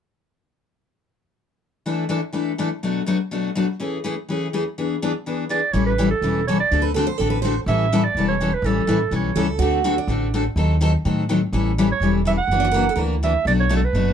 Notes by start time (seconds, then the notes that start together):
1.86 E3 A3 D4 E4 A4
2.09 E3 A3 D4 E4 A4
2.33 E3 A3 D4 E4 A4
2.58 E3 A3 D4 E4 A4
2.83 B2 F#3 A3 D4 F#4
3.06 B2 F#3 A3 D4 F#4
3.31 B2 F#3 A3 D4 F#4
3.55 B2 F#3 A3 D4 F#4
3.80 E3 A3 C#4 G#4
4.04 E3 A3 C#4 G#4
4.29 E3 A3 C#4 G#4
4.53 E3 A3 C#4 G#4
4.78 E3 B3 D4 G#4
5.02 E3 B3 D4 G#4
5.26 E3 B3 D4 G#4
5.49 E3 B3 D4 G#4 D5
5.72 A1 E3 G3 C#4 E4 A4 C#5
5.86 B4
5.98 E3 G3 C#4 E4 A4
6.11 A4
6.22 E1 E3 G3 C#4 E4 A4
6.47 E3 G3 C#4 E4 A4 C#5
6.60 D5
6.71 D2 D3 A3 C4 F#4 A4
6.82 B4
6.94 D3 A3 C4 F#4 A4
7.07 C5
7.18 A1 D3 A3 C4 F#4 A4
7.30 B4
7.42 D3 A3 C4 F#4 A4 C5
7.66 A1 E3 G3 C#4 E4 A4 E5
7.92 E3 G3 C#4 E4 A4
8.04 D5
8.15 E1 E3 G3 C#4 E4 A4
8.28 C#5
8.41 E3 G3 C#4 E4 A4
8.54 B4
8.62 A1 E3 G3 C#4 E4 A4
8.66 A4
8.87 A1 E3 G3 C#4 E4 A4
9.11 B1 E3 G3 C#4 E4 A4
9.16 C#5
9.35 C#2 E3 G3 C#4 E4 A4
9.58 D2 D3 A3 C4 F#4 A4
9.84 D3 A3 C4 F#4 A4
9.98 D4
10.07 A1 D3 A3 C4 F#4 A4
10.34 D3 A3 C4 F#4 A4
10.56 D#2 D#3 F#3 C4 D#4 A4
10.81 D#3 F#3 C4 D#4 A4
11.05 A2 D#3 F#3 C4 D#4 A4
11.29 D#3 F#3 C4 D#4 A4
11.52 A1 E3 G3 C#4 E4 A4
11.78 E3 G3 C#4 E4 A4
11.92 C#5
12.00 E1 E3 G3 C#4 E4 A4
12.25 E3 G3 C#4 E4 A4 E5
12.38 F#5
12.48 F#1 E3
12.52 A#3 D4 F#4
12.60 D4
12.65 F#4
12.71 E3 A#3 D4 F#4 A#4
12.89 A4
12.96 D2 E3 A#3 D4 F#4 A#4
13.23 E3 A#3 D4 F#4 E5
13.45 B1 B2 F#3 A3 D4 F#4 D5
13.60 C#5
13.69 B2 F#3 A3 D4 F#4
13.77 A4
13.85 B4
13.93 F#1 B2 F#3 A3 D4 F#4